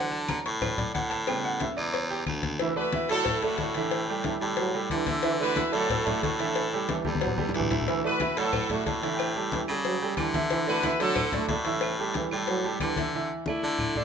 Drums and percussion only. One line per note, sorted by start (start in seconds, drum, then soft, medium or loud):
0.12 high conga soft
0.29 cowbell medium
0.29 high conga medium
0.29 claves medium
0.45 cowbell medium
0.45 high conga soft
0.62 cowbell loud
0.62 high conga soft
0.62 low conga medium
0.62 claves medium
0.78 cowbell medium
0.78 high conga soft
0.78 low conga medium
0.95 cowbell medium
0.95 high conga medium
1.11 cowbell medium
1.11 high conga soft
1.27 cowbell loud
1.27 high conga soft
1.27 claves medium
1.44 high conga soft
1.60 cowbell medium
1.60 high conga loud
1.78 claves medium
1.94 cowbell loud
1.94 high conga soft
2.11 high conga soft
2.26 cowbell medium
2.26 high conga medium
2.26 claves medium
2.43 cowbell medium
2.43 high conga medium
2.59 cowbell loud
2.59 high conga soft
2.76 high conga soft
2.92 cowbell medium
2.92 high conga loud
3.09 cowbell medium
3.09 high conga soft
3.25 cowbell loud
3.25 high conga soft
3.25 low conga medium
3.42 cowbell medium
3.42 high conga soft
3.58 cowbell medium
3.58 high conga medium
3.75 cowbell medium
3.75 high conga soft
3.91 cowbell loud
3.91 high conga soft
4.08 high conga soft
4.24 cowbell medium
4.24 high conga loud
4.57 cowbell loud
4.57 high conga soft
4.74 high conga soft
4.90 cowbell medium
4.90 high conga medium
5.07 cowbell medium
5.07 high conga medium
5.23 cowbell loud
5.23 high conga soft
5.40 high conga soft
5.56 cowbell medium
5.56 high conga loud
5.73 cowbell medium
5.73 high conga soft
5.90 cowbell loud
5.90 high conga soft
5.90 low conga medium
6.07 cowbell medium
6.07 high conga soft
6.07 low conga medium
6.23 cowbell medium
6.23 high conga medium
6.39 cowbell medium
6.39 high conga soft
6.56 cowbell loud
6.56 high conga soft
6.73 high conga soft
6.89 cowbell medium
6.89 high conga loud
7.05 high conga loud
7.15 high conga loud
7.21 cowbell loud
7.27 low conga medium
7.38 high conga loud
7.49 low conga medium
7.54 cowbell medium
7.60 low conga medium
7.71 cowbell medium
7.71 low conga loud
7.82 low conga medium
7.88 cowbell loud
8.04 high conga soft
8.20 cowbell medium
8.20 high conga loud
8.20 claves medium
8.37 cowbell medium
8.37 high conga soft
8.53 cowbell loud
8.53 high conga soft
8.53 low conga medium
8.53 claves medium
8.70 cowbell medium
8.70 high conga soft
8.70 low conga medium
8.86 cowbell medium
8.86 high conga medium
9.02 cowbell medium
9.02 high conga soft
9.19 cowbell loud
9.19 high conga soft
9.19 claves medium
9.36 high conga soft
9.52 cowbell medium
9.52 high conga loud
9.68 claves medium
9.85 cowbell loud
9.85 high conga soft
10.02 high conga soft
10.17 cowbell medium
10.17 high conga medium
10.17 claves medium
10.34 cowbell medium
10.34 high conga medium
10.50 cowbell loud
10.50 high conga soft
10.67 high conga soft
10.83 cowbell medium
10.83 high conga medium
10.83 claves medium
10.99 cowbell medium
10.99 high conga soft
11.16 cowbell loud
11.16 high conga soft
11.16 low conga medium
11.16 claves medium
11.32 cowbell medium
11.32 high conga soft
11.32 low conga medium
11.49 cowbell medium
11.49 high conga medium
11.65 cowbell medium
11.65 high conga soft
11.81 cowbell loud
11.81 high conga soft
11.81 claves medium
11.99 high conga soft
12.14 cowbell medium
12.14 high conga loud
12.31 claves medium
12.48 cowbell loud
12.48 high conga soft
12.64 high conga soft
12.80 cowbell medium
12.80 high conga medium
12.80 claves medium
12.96 cowbell medium
12.96 high conga medium
13.13 high conga soft
13.30 high conga soft
13.46 high conga loud
13.46 claves medium
13.62 high conga soft
13.79 high conga soft
13.79 low conga medium
13.79 claves medium
13.96 high conga soft
13.96 low conga medium